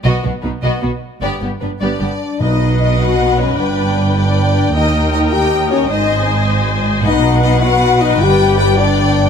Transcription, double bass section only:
0.05 B1
0.24 B1
0.44 B1
0.63 B1
0.83 B1
1.22 G1
1.42 G1
1.62 G1
1.81 G1
2.01 G1
2.40 B1
3.57 G1
4.73 D#2
5.89 G#1
7.05 B1
8.20 G1

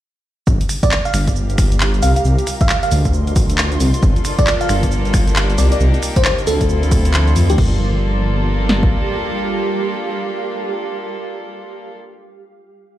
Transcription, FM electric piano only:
0.83 D5
1.05 F5
2.02 F5
2.16 F5
2.61 F5
2.83 F5
4.39 D5
4.61 F5
5.58 D5
5.72 D5
6.16 C5
6.25 C5
6.47 A4
7.50 G4

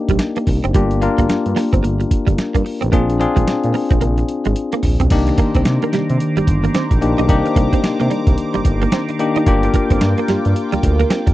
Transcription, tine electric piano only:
Already playing: A#3 D4 D#4 G4
0.75 A#3 D4 F4 G4
1.02 A#3 D4 F4 A#4
2.92 C4 D4 F4 G#4
3.20 C4 D4 F4 G#4
5.11 A#3 D4 D#4 G4
7.01 A#3 D4 D#4 G4
7.29 A#3 D4 D#4 G4
9.19 A#3 D4 D#4 G4
9.47 A#3 D4 F4 G4

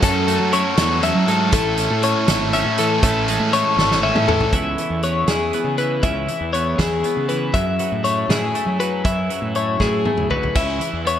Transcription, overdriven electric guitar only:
0.02 F#3 C#4 F#4 A4
0.27 C#4 F#4 A4
0.52 F#3 C#4 F#4 A4
0.77 C#4 F#4 A4
1.02 F#3 C#4 F#4 A4
1.27 C#4 F#4 A4
1.52 A3 C#4 E4 A4
1.77 C#4 E4 A4
2.02 A3 C#4 E4 A4
2.28 C#4 E4 A4
2.53 A3 C#4 E4 A4
2.77 C#4 E4 A4
3.02 A3 C#4 E4 A4
3.27 C#4 E4 A4
3.53 A3 C#4 E4 A4
3.77 C#4 E4 A4
4.02 A3 C#4 E4 A4
4.27 C#4 E4 A4

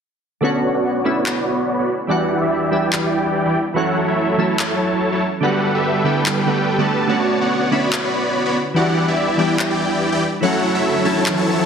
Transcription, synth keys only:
0.41 D3 A3 B3 C#4 F#4
1.04 D3 A3 B3 C#4 E4
2.07 E3 G3 B3 D4
2.11 F#4
2.71 E3 G3 B3 D4 E4
3.74 E3 F#3 A3 C#4 F#4
4.37 E3 F#3 A3 C#4 E4
5.41 D3 G3 A3 B3
5.45 F#4
6.04 D3 G3 A3 B3 E4
6.46 D3 G3 A3 B3 F#4
6.78 D3 G3 A3 B3 F#4
7.07 D3 A3 B3 C#4 F#4
7.71 D3 A3 B3 C#4 E4
8.74 E3 G3 B3 D4 F#4
9.38 E3 G3 B3 D4 E4
10.41 E3 F#3 A3 C#4 F#4
11.04 E3 F#3 A3 C#4 E4

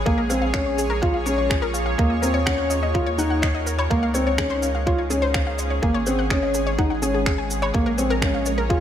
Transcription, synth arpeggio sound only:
0.06 G#4
0.18 A#4
0.30 F5
0.42 F5
0.54 C#5
0.66 C#5
0.78 G#4
0.90 A#4
1.02 F5
1.14 F5
1.26 C#5
1.38 C#5
1.50 G#4
1.62 A#4
1.74 F5
1.86 F5
1.98 D#5
2.10 D#5
2.22 A#4
2.34 C#5
2.46 F#5
2.58 F#5
2.70 D#5
2.83 D#5
2.94 A#4
3.07 C#5
3.19 F#5
3.30 F#5
3.42 D#5
3.54 D#5
3.66 A#4
3.79 C#5
3.90 F5
4.03 F5
4.14 C#5
4.27 C#5
4.38 G#4
4.50 C5
4.62 F5
4.75 F5
4.87 C#5
4.98 C#5
5.10 G#4
5.22 C5
5.34 F5
5.47 F5
5.59 C#5
5.70 C#5
5.82 G#4
5.94 C#5
6.07 F#5
6.19 F#5
6.30 D#5
6.43 D#5
6.55 G#4
6.67 C#5
6.79 F#5
6.90 F#5
7.02 G#4
7.14 G#4
7.26 G#4
7.38 G#5
7.62 C#5
7.74 C#5
7.86 A#4
7.98 G#4
8.10 A#4
8.22 F5
8.34 F5
8.46 C#5
8.58 A#4
8.70 G#4

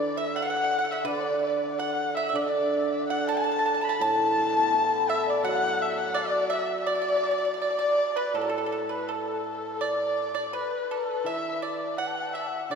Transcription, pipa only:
Already playing: D5
0.17 E5
0.36 F#5
0.42 F#5
0.50 F#5
0.57 F#5
0.64 F#5
0.71 F#5
0.79 F#5
0.85 F#5
0.92 F#5
1.05 B4
1.27 D5
1.79 F#5
2.17 E5
2.29 E5
2.35 D5
3.10 F#5
3.29 A5
3.37 A5
3.44 A5
3.52 A5
3.59 A5
3.66 A5
3.74 A5
3.81 A5
3.89 A5
4.01 A5
5.09 E5
5.44 F#5
6.14 D5
6.50 E5
6.87 D5
6.95 D5
7.02 D5
7.09 D5
7.17 D5
7.23 D5
7.31 D5
7.38 D5
7.45 D5
7.54 D5
7.62 D5
7.70 D5
7.79 D5
8.16 B4
8.35 A4
8.41 A4
8.49 A4
8.58 A4
8.66 A4
8.72 A4
8.89 B4
9.09 A4
9.81 D5
10.35 D5
10.53 B4
10.91 A4
11.26 E5
11.62 D5
11.98 F#5
12.35 E5
12.71 D5

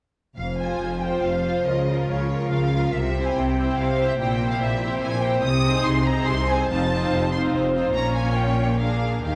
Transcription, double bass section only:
0.38 F1
0.81 F1
1.23 F1
1.65 C#2
2.08 C#2
2.51 C#2
2.93 C2
3.35 C2
3.78 C2
4.19 A#1
4.61 A#1
5.02 A#1
5.43 C2
5.85 C2
6.27 C2
6.70 F1
7.11 F1
7.54 F1
7.95 A#1
9.25 D#2

